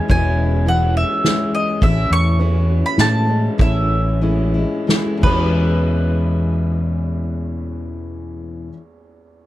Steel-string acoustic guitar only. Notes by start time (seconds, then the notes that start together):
0.08 E2 B2 E3 G#3 C#4 E4
0.66 E3 G#3 C#4 E4
1.24 E3 G#3 C#4 E4
1.81 A2 E3 C#4 E4
2.39 E3 C#4 E4
2.98 E3 G#3 C#4 E4
3.27 G#3 C#4 E4
3.58 A2 E3 C#4 E4
4.21 E3 G#3 C#4 E4
4.54 G#3 C#4 E4
4.87 E3 G#3 C#4 E4
5.17 E2 B2
5.24 E3 G#3
5.29 C#4 E4